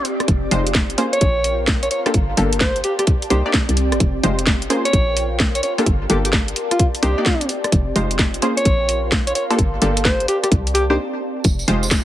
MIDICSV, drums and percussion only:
0, 0, Header, 1, 2, 480
1, 0, Start_track
1, 0, Tempo, 465116
1, 291, Time_signature, 4, 2, 24, 8
1, 12425, End_track
2, 0, Start_track
2, 0, Title_t, "Drums"
2, 50, Note_on_c, 9, 46, 108
2, 154, Note_off_c, 9, 46, 0
2, 207, Note_on_c, 9, 37, 72
2, 207, Note_on_c, 9, 42, 36
2, 290, Note_off_c, 9, 42, 0
2, 290, Note_on_c, 9, 42, 63
2, 291, Note_on_c, 9, 36, 126
2, 311, Note_off_c, 9, 37, 0
2, 394, Note_off_c, 9, 36, 0
2, 394, Note_off_c, 9, 42, 0
2, 530, Note_on_c, 9, 46, 105
2, 633, Note_off_c, 9, 46, 0
2, 687, Note_on_c, 9, 42, 58
2, 771, Note_on_c, 9, 36, 121
2, 771, Note_on_c, 9, 38, 122
2, 791, Note_off_c, 9, 42, 0
2, 874, Note_off_c, 9, 36, 0
2, 874, Note_off_c, 9, 38, 0
2, 927, Note_on_c, 9, 42, 35
2, 1010, Note_on_c, 9, 46, 100
2, 1031, Note_off_c, 9, 42, 0
2, 1114, Note_off_c, 9, 46, 0
2, 1167, Note_on_c, 9, 42, 61
2, 1249, Note_off_c, 9, 42, 0
2, 1249, Note_on_c, 9, 42, 63
2, 1251, Note_on_c, 9, 36, 123
2, 1352, Note_off_c, 9, 42, 0
2, 1355, Note_off_c, 9, 36, 0
2, 1489, Note_on_c, 9, 46, 97
2, 1592, Note_off_c, 9, 46, 0
2, 1729, Note_on_c, 9, 38, 127
2, 1731, Note_on_c, 9, 36, 126
2, 1832, Note_off_c, 9, 38, 0
2, 1835, Note_off_c, 9, 36, 0
2, 1886, Note_on_c, 9, 42, 49
2, 1969, Note_on_c, 9, 46, 95
2, 1989, Note_off_c, 9, 42, 0
2, 2072, Note_off_c, 9, 46, 0
2, 2125, Note_on_c, 9, 37, 69
2, 2125, Note_on_c, 9, 46, 59
2, 2209, Note_on_c, 9, 42, 64
2, 2211, Note_on_c, 9, 36, 127
2, 2229, Note_off_c, 9, 37, 0
2, 2229, Note_off_c, 9, 46, 0
2, 2312, Note_off_c, 9, 42, 0
2, 2314, Note_off_c, 9, 36, 0
2, 2449, Note_on_c, 9, 46, 102
2, 2552, Note_off_c, 9, 46, 0
2, 2607, Note_on_c, 9, 42, 61
2, 2689, Note_on_c, 9, 38, 120
2, 2691, Note_on_c, 9, 36, 119
2, 2710, Note_off_c, 9, 42, 0
2, 2792, Note_off_c, 9, 38, 0
2, 2794, Note_off_c, 9, 36, 0
2, 2847, Note_on_c, 9, 42, 35
2, 2929, Note_on_c, 9, 46, 102
2, 2950, Note_off_c, 9, 42, 0
2, 3032, Note_off_c, 9, 46, 0
2, 3085, Note_on_c, 9, 37, 50
2, 3085, Note_on_c, 9, 42, 64
2, 3169, Note_off_c, 9, 42, 0
2, 3169, Note_on_c, 9, 42, 64
2, 3171, Note_on_c, 9, 36, 127
2, 3189, Note_off_c, 9, 37, 0
2, 3272, Note_off_c, 9, 42, 0
2, 3274, Note_off_c, 9, 36, 0
2, 3326, Note_on_c, 9, 46, 60
2, 3410, Note_off_c, 9, 46, 0
2, 3410, Note_on_c, 9, 46, 98
2, 3513, Note_off_c, 9, 46, 0
2, 3649, Note_on_c, 9, 38, 122
2, 3651, Note_on_c, 9, 36, 124
2, 3753, Note_off_c, 9, 38, 0
2, 3754, Note_off_c, 9, 36, 0
2, 3808, Note_on_c, 9, 42, 53
2, 3889, Note_on_c, 9, 46, 96
2, 3911, Note_off_c, 9, 42, 0
2, 3992, Note_off_c, 9, 46, 0
2, 4047, Note_on_c, 9, 37, 67
2, 4047, Note_on_c, 9, 42, 37
2, 4131, Note_off_c, 9, 42, 0
2, 4131, Note_on_c, 9, 36, 121
2, 4131, Note_on_c, 9, 42, 65
2, 4150, Note_off_c, 9, 37, 0
2, 4234, Note_off_c, 9, 36, 0
2, 4234, Note_off_c, 9, 42, 0
2, 4371, Note_on_c, 9, 46, 102
2, 4474, Note_off_c, 9, 46, 0
2, 4527, Note_on_c, 9, 42, 64
2, 4610, Note_on_c, 9, 38, 115
2, 4611, Note_on_c, 9, 36, 114
2, 4631, Note_off_c, 9, 42, 0
2, 4714, Note_off_c, 9, 36, 0
2, 4714, Note_off_c, 9, 38, 0
2, 4768, Note_on_c, 9, 42, 37
2, 4852, Note_on_c, 9, 46, 98
2, 4871, Note_off_c, 9, 42, 0
2, 4955, Note_off_c, 9, 46, 0
2, 5009, Note_on_c, 9, 42, 67
2, 5091, Note_on_c, 9, 36, 117
2, 5092, Note_off_c, 9, 42, 0
2, 5092, Note_on_c, 9, 42, 67
2, 5195, Note_off_c, 9, 36, 0
2, 5195, Note_off_c, 9, 42, 0
2, 5332, Note_on_c, 9, 46, 104
2, 5435, Note_off_c, 9, 46, 0
2, 5571, Note_on_c, 9, 36, 121
2, 5571, Note_on_c, 9, 38, 124
2, 5674, Note_off_c, 9, 38, 0
2, 5675, Note_off_c, 9, 36, 0
2, 5729, Note_on_c, 9, 42, 52
2, 5811, Note_on_c, 9, 46, 99
2, 5832, Note_off_c, 9, 42, 0
2, 5914, Note_off_c, 9, 46, 0
2, 5969, Note_on_c, 9, 37, 63
2, 5969, Note_on_c, 9, 46, 59
2, 6052, Note_on_c, 9, 36, 116
2, 6052, Note_on_c, 9, 42, 67
2, 6072, Note_off_c, 9, 37, 0
2, 6072, Note_off_c, 9, 46, 0
2, 6155, Note_off_c, 9, 36, 0
2, 6155, Note_off_c, 9, 42, 0
2, 6292, Note_on_c, 9, 46, 103
2, 6395, Note_off_c, 9, 46, 0
2, 6450, Note_on_c, 9, 42, 63
2, 6532, Note_on_c, 9, 36, 110
2, 6532, Note_on_c, 9, 38, 109
2, 6553, Note_off_c, 9, 42, 0
2, 6635, Note_off_c, 9, 36, 0
2, 6635, Note_off_c, 9, 38, 0
2, 6690, Note_on_c, 9, 42, 39
2, 6771, Note_on_c, 9, 46, 109
2, 6793, Note_off_c, 9, 42, 0
2, 6874, Note_off_c, 9, 46, 0
2, 6928, Note_on_c, 9, 37, 49
2, 6928, Note_on_c, 9, 42, 66
2, 7012, Note_off_c, 9, 42, 0
2, 7012, Note_on_c, 9, 36, 114
2, 7012, Note_on_c, 9, 42, 72
2, 7031, Note_off_c, 9, 37, 0
2, 7115, Note_off_c, 9, 36, 0
2, 7115, Note_off_c, 9, 42, 0
2, 7168, Note_on_c, 9, 46, 60
2, 7251, Note_off_c, 9, 46, 0
2, 7251, Note_on_c, 9, 46, 103
2, 7355, Note_off_c, 9, 46, 0
2, 7492, Note_on_c, 9, 36, 120
2, 7492, Note_on_c, 9, 38, 117
2, 7595, Note_off_c, 9, 36, 0
2, 7595, Note_off_c, 9, 38, 0
2, 7649, Note_on_c, 9, 42, 56
2, 7731, Note_on_c, 9, 46, 97
2, 7752, Note_off_c, 9, 42, 0
2, 7834, Note_off_c, 9, 46, 0
2, 7888, Note_on_c, 9, 37, 65
2, 7888, Note_on_c, 9, 42, 40
2, 7971, Note_off_c, 9, 42, 0
2, 7971, Note_on_c, 9, 42, 69
2, 7972, Note_on_c, 9, 36, 114
2, 7991, Note_off_c, 9, 37, 0
2, 8074, Note_off_c, 9, 42, 0
2, 8075, Note_off_c, 9, 36, 0
2, 8211, Note_on_c, 9, 46, 107
2, 8314, Note_off_c, 9, 46, 0
2, 8368, Note_on_c, 9, 42, 66
2, 8452, Note_on_c, 9, 36, 116
2, 8452, Note_on_c, 9, 38, 113
2, 8471, Note_off_c, 9, 42, 0
2, 8555, Note_off_c, 9, 36, 0
2, 8556, Note_off_c, 9, 38, 0
2, 8609, Note_on_c, 9, 42, 38
2, 8691, Note_on_c, 9, 46, 114
2, 8712, Note_off_c, 9, 42, 0
2, 8795, Note_off_c, 9, 46, 0
2, 8849, Note_on_c, 9, 42, 66
2, 8931, Note_off_c, 9, 42, 0
2, 8931, Note_on_c, 9, 42, 68
2, 8932, Note_on_c, 9, 36, 113
2, 9034, Note_off_c, 9, 42, 0
2, 9035, Note_off_c, 9, 36, 0
2, 9172, Note_on_c, 9, 46, 109
2, 9275, Note_off_c, 9, 46, 0
2, 9412, Note_on_c, 9, 36, 114
2, 9412, Note_on_c, 9, 38, 115
2, 9515, Note_off_c, 9, 36, 0
2, 9515, Note_off_c, 9, 38, 0
2, 9569, Note_on_c, 9, 42, 55
2, 9652, Note_on_c, 9, 46, 107
2, 9672, Note_off_c, 9, 42, 0
2, 9755, Note_off_c, 9, 46, 0
2, 9809, Note_on_c, 9, 37, 65
2, 9809, Note_on_c, 9, 46, 64
2, 9892, Note_on_c, 9, 36, 118
2, 9893, Note_on_c, 9, 42, 66
2, 9913, Note_off_c, 9, 37, 0
2, 9913, Note_off_c, 9, 46, 0
2, 9995, Note_off_c, 9, 36, 0
2, 9996, Note_off_c, 9, 42, 0
2, 10131, Note_on_c, 9, 46, 114
2, 10234, Note_off_c, 9, 46, 0
2, 10288, Note_on_c, 9, 42, 69
2, 10372, Note_on_c, 9, 36, 112
2, 10372, Note_on_c, 9, 38, 114
2, 10392, Note_off_c, 9, 42, 0
2, 10475, Note_off_c, 9, 36, 0
2, 10475, Note_off_c, 9, 38, 0
2, 10530, Note_on_c, 9, 42, 36
2, 10612, Note_on_c, 9, 46, 111
2, 10633, Note_off_c, 9, 42, 0
2, 10716, Note_off_c, 9, 46, 0
2, 10770, Note_on_c, 9, 37, 52
2, 10770, Note_on_c, 9, 42, 65
2, 10852, Note_on_c, 9, 36, 117
2, 10853, Note_off_c, 9, 42, 0
2, 10853, Note_on_c, 9, 42, 68
2, 10873, Note_off_c, 9, 37, 0
2, 10955, Note_off_c, 9, 36, 0
2, 10956, Note_off_c, 9, 42, 0
2, 11011, Note_on_c, 9, 46, 65
2, 11093, Note_off_c, 9, 46, 0
2, 11093, Note_on_c, 9, 46, 109
2, 11196, Note_off_c, 9, 46, 0
2, 11808, Note_on_c, 9, 54, 65
2, 11813, Note_on_c, 9, 36, 121
2, 11814, Note_on_c, 9, 42, 67
2, 11911, Note_off_c, 9, 54, 0
2, 11916, Note_off_c, 9, 36, 0
2, 11917, Note_off_c, 9, 42, 0
2, 11961, Note_on_c, 9, 54, 39
2, 12053, Note_on_c, 9, 46, 119
2, 12064, Note_off_c, 9, 54, 0
2, 12156, Note_off_c, 9, 46, 0
2, 12207, Note_on_c, 9, 54, 86
2, 12293, Note_off_c, 9, 54, 0
2, 12293, Note_on_c, 9, 36, 112
2, 12293, Note_on_c, 9, 38, 121
2, 12293, Note_on_c, 9, 54, 68
2, 12396, Note_off_c, 9, 36, 0
2, 12396, Note_off_c, 9, 38, 0
2, 12397, Note_off_c, 9, 54, 0
2, 12425, End_track
0, 0, End_of_file